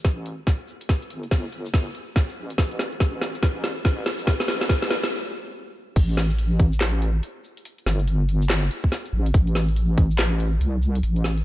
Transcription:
Already playing: A1
0.05 kick, snare, closed hi-hat
0.26 closed hi-hat
0.47 kick, snare, closed hi-hat
0.68 shaker
0.81 closed hi-hat
0.89 kick, snare, closed hi-hat
1.02 closed hi-hat
1.10 G1, closed hi-hat
1.23 closed hi-hat
1.31 kick, snare, closed hi-hat
1.52 closed hi-hat
1.66 shaker
1.74 kick, snare, closed hi-hat
1.95 closed hi-hat
2.16 kick, snare, closed hi-hat
2.29 shaker
2.37 A1
2.50 closed hi-hat
2.58 A1, kick, snare, closed hi-hat
2.71 closed hi-hat
2.79 snare, closed hi-hat
2.92 closed hi-hat
3.00 kick, snare, closed hi-hat
3.22 snare, closed hi-hat
3.35 shaker
3.43 kick, snare, closed hi-hat
3.64 snare, closed hi-hat
3.85 A1, kick, snare, closed hi-hat
4.06 snare, shaker
4.19 closed hi-hat
4.27 kick, snare, closed hi-hat
4.40 snare, closed hi-hat
4.48 A1, snare, closed hi-hat
4.61 snare, closed hi-hat
4.69 kick, snare, closed hi-hat
4.82 snare
4.91 snare, closed hi-hat
5.04 snare, shaker
5.96 A1, kick, closed hi-hat, crash
6.09 closed hi-hat
6.17 snare, closed hi-hat
6.30 closed hi-hat
6.39 closed hi-hat
6.60 kick, closed hi-hat
6.73 shaker
6.81 snare, clap, closed hi-hat
7.02 closed hi-hat
7.23 closed hi-hat
7.44 shaker
7.57 closed hi-hat
7.65 closed hi-hat
7.78 closed hi-hat
7.86 G1, snare, closed hi-hat
8.00 closed hi-hat
8.08 closed hi-hat
8.29 closed hi-hat
8.42 shaker
8.50 snare, clap, closed hi-hat
8.71 closed hi-hat
8.84 kick
8.92 snare, closed hi-hat
9.05 shaker
9.13 A1
9.26 closed hi-hat
9.34 A1, kick, closed hi-hat
9.47 closed hi-hat
9.55 snare, closed hi-hat
9.68 closed hi-hat
9.76 closed hi-hat
9.98 kick, closed hi-hat
10.11 shaker
10.19 snare, clap, closed hi-hat
10.40 closed hi-hat
10.61 C2, closed hi-hat
10.82 shaker
10.95 closed hi-hat
11.03 A1, closed hi-hat
11.16 closed hi-hat
11.24 snare, closed hi-hat
11.37 closed hi-hat

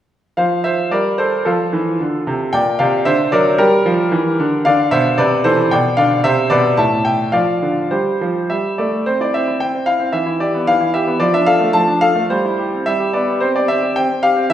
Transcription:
0.37 F3 C5 F5
0.64 C5 E5
0.91 G3 A#4 D5
1.18 A4 C5
1.45 F3 F4 A4
1.73 E3
2.00 D3
2.27 C3
2.53 A#2 D5 G5
2.79 C3 D5 F5
3.05 D3 C5 E5
3.32 F#3 A#4 D5
3.58 G3 G4 A#4
3.86 F3
4.12 E3
4.39 D3
4.65 D3 D5 F5
4.91 B2 C5 E5
5.18 C3 B4 D5
5.44 E3 A4 C5
5.71 B2 D5 G5
5.97 D3 D5 F5
6.24 C3 C5 E5
6.50 B2 B4 D5
6.77 A2 E5 A5
7.05 E5 G5
7.32 F3 D5 F5
7.62 D3
7.91 G3 G4 C5
8.21 F3
8.50 G3 E5
8.78 A3 D5
9.06 C4 C5
9.20 E4 D5
9.34 C4 E5
9.47 E4
9.60 C4 G5
9.75 C4
9.86 E4 F5
10.00 C4
10.13 E3 E5
10.26 E4
10.40 G4 D5
10.54 B3
10.67 E3 F5
10.80 E4
10.94 G4 E5
11.07 B3
11.20 F3 D5
11.34 D4 E5
11.46 A4 F5
11.61 A3
11.73 F3 A5
11.88 D4
12.01 A4 F5
12.15 A3
12.30 G3 C5
12.45 E4
12.59 G4
12.73 C4
12.86 G3 E5
13.00 G4
13.13 B3 D5
13.28 G4
13.40 C4 C5
13.55 G4 D5
13.68 C4 E5
13.83 G4
13.96 C4 G5
14.10 C4
14.23 G4 F5
14.36 C4
14.50 E5

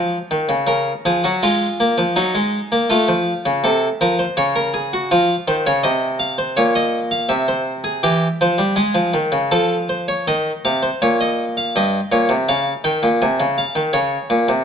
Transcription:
Already playing: F3 A#4
0.31 D#3
0.49 C#3
0.67 C#3 A#4
1.05 F3 G#4
1.24 F#3 F#4
1.43 G#3 F4
1.80 A#3
1.98 F3
2.16 F#3 D#4
2.35 G#3
2.72 A#3
2.90 A3 F4
3.08 F3
3.46 C#3
3.64 C3 A4
4.01 F3 A#4
4.19 C5
4.37 C#3 C#5
4.56 A#4
4.74 G#4
4.93 F#4
5.11 F3 F4
5.48 D#3 C5
5.66 C#3 C#5
5.83 C3 D#5
6.19 F5
6.38 C5
6.57 A#2 C#5
6.75 D#5
7.11 F5
7.29 C3 E5
7.48 C5
7.84 G#4
8.03 E3 G4
8.41 F3 C5
8.58 G3
8.76 G#3 G#4
8.95 F3
9.14 D#3
9.32 C#3
9.51 F3 A4
9.89 C5
10.08 C#5
10.28 D#3 D#5
10.65 C3 F5
10.83 C5
11.02 A#2 C#5
11.21 D#5
11.57 F5
11.76 G2 D#5
12.12 A#2 C#5
12.29 C3
12.49 C#3 F5
12.84 D#3 G5
13.03 A#2
13.22 C3 G#5
13.40 C#3
13.58 F5
13.75 D#3
13.93 C#3 C#5
14.30 A#2
14.48 C3

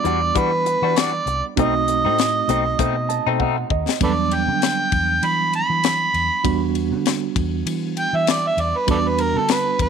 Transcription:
Already playing: G3 B3 D4 F#4 D5
0.04 E2 E3 G3 D4 F#4, closed hi-hat
0.22 muted clean electric guitar stroke
0.35 E3 G3 D4 F#4 B4, kick, closed hi-hat
0.52 muted clean electric guitar stroke
0.66 muted clean electric guitar stroke, closed hi-hat
0.82 E3 G3 D4 F#4
0.96 E3 G3 D4 F#4 D5, snare, closed hi-hat
1.13 muted clean electric guitar stroke
1.26 C2, muted clean electric guitar stroke, closed hi-hat
1.56 B1 B2 A3 C4 D#4 F#4 D#5, kick, closed hi-hat
1.88 muted clean electric guitar stroke, closed hi-hat
2.05 A2 A3 C4 D#4
2.18 muted clean electric guitar stroke, snare, closed hi-hat
2.48 B1 B2 A3 C4 D#4, closed hi-hat
2.66 muted clean electric guitar stroke
2.79 B2 A3 C4 D#4, kick, closed hi-hat
2.97 muted clean electric guitar stroke
3.09 A5, muted clean electric guitar stroke, closed hi-hat
3.26 B2 A3 C4 D#4
3.40 B2 A3 C4 D#4 F#5, kick
3.58 muted clean electric guitar stroke
3.70 D#2 D#5, muted clean electric guitar stroke, kick
3.89 snare
4.00 E2 F#3 G3 B3 D4 A4 B4 D5, kick, ride
4.31 G5, ride
4.48 D3
4.62 snare, ride
4.92 E2, kick, ride
5.22 E3 B5, ride
5.53 B5, ride
5.70 E3
5.84 snare, ride
6.14 E2, ride
6.44 E2 G3 B3 D4 F#4, kick, ride
6.75 ride
6.91 D3
7.06 snare, ride
7.36 E2, kick, ride
7.66 E3, ride
7.97 G5, ride
8.13 E3 E5
8.27 D5, snare, ride
8.47 E5
8.57 E2 D5, ride
8.77 B4
8.87 E2 G3 B3 D4 F#4, kick, ride
8.91 A4 B4 D5
9.08 B4
9.18 A#4, ride
9.35 D3 A4
9.48 B4, snare, ride
9.79 E2 B4, kick, ride

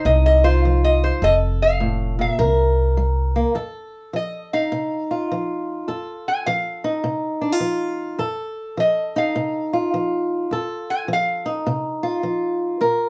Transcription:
Already playing: D#4 A4
0.05 C2 C3 D#5
0.26 D#5
0.44 F4 C5
0.65 F3
0.84 D#5
1.04 C5
1.22 F1 F2 A4 D#5
1.62 F5
1.80 A2
2.19 A#2 E5
2.39 C2 C3 A#4
2.97 G3
3.36 A#3
3.55 F2 A4
4.13 F3 D#5
4.53 D#4 F5
4.72 C3
5.11 F4
5.32 F3
5.88 F2 A4
6.28 G#5
6.46 F3 F5
6.84 D#4
7.04 C3
7.41 D4
7.52 F4
7.60 F3
8.19 F2 A4
8.77 F3 D#5
9.16 D#4 F5
9.36 C3
9.73 F4
9.94 F3
10.51 F2 A4
10.90 G#5
11.08 F3
11.13 F5
11.46 D#4
11.67 C3
12.03 F4
12.23 F3
12.81 A#2 A#4

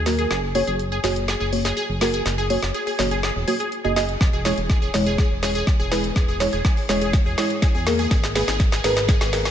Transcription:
Already playing: D#2
0.06 A#3 F#4 A#4, snare, open hi-hat
0.19 G#4, closed hi-hat
0.30 F#1 G#4, snare, closed hi-hat
0.55 A#3 F#4 G#4 C#5, open hi-hat
0.67 F#1 G#4, closed hi-hat
0.79 closed hi-hat
0.92 G#4
1.04 F#1 A#3 F#4 G#4 C#5, snare, open hi-hat
1.16 closed hi-hat
1.28 G#4, snare, closed hi-hat
1.40 F#1 G#4
1.52 A#3 F#4 C#5, open hi-hat
1.65 G#4, snare, closed hi-hat
1.77 G#4, closed hi-hat
1.89 F#1
2.01 A#3 F#4 G#4 A#4, snare, open hi-hat
2.14 G#4, closed hi-hat
2.25 F#1, snare, closed hi-hat
2.38 G#4
2.50 A#3 F#4 G#4 C#5, open hi-hat
2.63 F#1, snare, closed hi-hat
2.74 G#4, closed hi-hat
2.87 G#4, open hi-hat
2.99 F#1 A#3 F#4 C#5, snare, open hi-hat
3.11 G#4, closed hi-hat
3.23 G#4, snare, closed hi-hat
3.36 E1
3.48 A#3 F#4 G#4 C#5, open hi-hat
3.60 G#4, closed hi-hat
3.72 closed hi-hat
3.84 F#1 A#3 F#4 G#4 D#5
3.96 A#3 F#4 G#4 D#5, snare, open hi-hat
4.09 closed hi-hat
4.21 E1, kick, snare, closed hi-hat
4.33 G#4
4.45 G#3 E4 G#4 C#5, snare, open hi-hat
4.58 E1, closed hi-hat
4.69 G#4, kick, snare, closed hi-hat
4.82 G#4
4.94 E1 G#3 E4 C#5, snare, open hi-hat
5.06 G#4, closed hi-hat
5.18 G#4, kick, snare, closed hi-hat
5.31 E1
5.43 G#3 E4 G#4 C#5, snare, open hi-hat
5.55 G#4, closed hi-hat
5.67 kick, snare, closed hi-hat
5.80 E1 G#4
5.92 G#3 E4 G#4 B4, snare, open hi-hat
6.04 closed hi-hat
6.16 E1 G#4, kick, snare, closed hi-hat
6.29 G#4
6.40 G#3 E4 C#5, snare, open hi-hat
6.53 E1 G#4, closed hi-hat
6.65 G#4, kick, snare, closed hi-hat
6.77 open hi-hat
6.89 E1 G#3 E4 G#4 C#5, snare, open hi-hat
7.01 G#4, closed hi-hat
7.13 kick, snare, closed hi-hat
7.26 E1 G#4
7.38 G#3 E4 G#4 C#5, snare, open hi-hat
7.50 closed hi-hat
7.62 G#4, kick, snare, closed hi-hat
7.75 E2 G#4
7.87 A#3 G#4 A#4, snare, open hi-hat
7.99 G#4, closed hi-hat
8.11 G#1 G#4, kick, snare, closed hi-hat
8.24 snare
8.35 A#3 G#4 B4, snare, open hi-hat
8.48 G#1 G#4, snare, closed hi-hat
8.60 kick, snare, closed hi-hat
8.72 G#4, snare
8.84 G#1 G#4 A#4 B4, snare, open hi-hat
8.97 snare, closed hi-hat
9.09 G#4, kick, snare, closed hi-hat
9.21 G#1 G#4, snare
9.33 G#4 A#4 B4, snare, open hi-hat
9.45 G#4, snare, closed hi-hat

